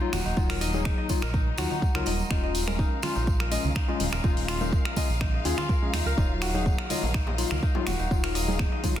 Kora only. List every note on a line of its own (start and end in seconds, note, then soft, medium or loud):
0.00 0.25 D#4 medium
0.00 0.12 F#4 medium
0.00 0.49 A#4 medium
0.00 0.60 D#5 medium
0.13 1.58 F#4 medium
0.25 0.85 D#4 medium
0.50 1.22 A#4 medium
0.61 0.97 D#5 loud
0.85 1.33 D#4 medium
0.98 2.05 D#5 medium
1.22 1.95 A#4 medium
1.34 1.70 D#4 medium
1.58 3.09 F#4 medium
1.71 2.30 D#4 medium
1.95 2.67 A#4 medium
2.06 2.43 D#5 medium
2.31 2.79 D#4 medium
2.43 3.50 D#5 medium
2.68 3.40 A#4 medium
2.79 3.15 D#4 medium
3.03 4.48 F4 medium
3.16 3.75 D#4 medium
3.40 4.12 A#4 medium
3.51 3.88 D#5 loud
3.76 4.24 D#4 medium
3.88 4.96 D#5 medium
4.13 4.85 A#4 medium
4.24 4.61 D#4 medium
4.48 5.58 F4 medium
4.61 5.21 D#4 medium
4.85 5.69 A#4 medium
4.97 5.33 D#5 loud
5.21 5.93 D#4 medium
5.34 6.41 D#5 medium
5.45 6.82 G#4 medium
5.58 6.48 F4 loud
5.70 6.06 A#4 medium
5.94 6.17 D#4 medium
6.06 6.78 A#4 medium
6.18 6.54 D#4 medium
6.42 7.86 F#4 medium
6.55 7.14 D#4 medium
6.79 7.51 A#4 medium
6.90 7.27 D#5 loud
7.14 7.62 D#4 medium
7.27 8.34 D#5 medium
7.51 8.23 A#4 medium
7.63 7.99 D#4 medium
7.87 9.00 F#4 medium
7.99 8.59 D#4 medium
8.24 8.96 A#4 medium
8.35 8.72 D#5 loud
8.59 9.00 D#4 medium
8.72 9.00 D#5 medium
8.96 9.00 A#4 medium